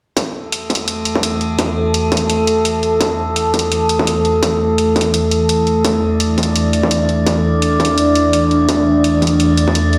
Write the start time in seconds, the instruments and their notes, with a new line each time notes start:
0.16 ambient pad E3 E4 A4 A5, synth drone A3 A4, kick, closed hi-hat
0.52 closed hi-hat
0.70 kick, closed hi-hat
0.75 closed hi-hat
0.88 closed hi-hat
1.05 closed hi-hat
1.15 kick
1.23 closed hi-hat
1.41 closed hi-hat
1.59 kick, closed hi-hat
1.94 closed hi-hat
2.12 kick, closed hi-hat
2.17 closed hi-hat
2.30 closed hi-hat
2.47 closed hi-hat
2.65 closed hi-hat
2.83 closed hi-hat
3.01 kick, closed hi-hat
3.36 closed hi-hat
3.54 kick, closed hi-hat
3.59 closed hi-hat
3.72 closed hi-hat
3.89 closed hi-hat
3.99 kick
4.07 closed hi-hat
4.25 closed hi-hat
4.43 kick, closed hi-hat
4.78 closed hi-hat
4.96 kick, closed hi-hat
5.01 closed hi-hat
5.14 closed hi-hat
5.31 closed hi-hat
5.49 closed hi-hat
5.67 closed hi-hat
5.85 ambient pad D5, synth drone D5, kick, closed hi-hat
6.20 closed hi-hat
6.38 kick, closed hi-hat
6.43 closed hi-hat
6.56 closed hi-hat
6.73 closed hi-hat
6.83 kick
6.91 closed hi-hat
7.09 closed hi-hat
7.27 kick, closed hi-hat
7.62 closed hi-hat
7.80 kick, closed hi-hat
7.85 closed hi-hat
7.98 closed hi-hat
8.15 closed hi-hat
8.33 closed hi-hat
8.51 closed hi-hat
8.69 kick, closed hi-hat
9.04 closed hi-hat
9.22 kick, closed hi-hat
9.27 closed hi-hat
9.40 closed hi-hat
9.57 closed hi-hat
9.68 kick
9.75 closed hi-hat
9.93 closed hi-hat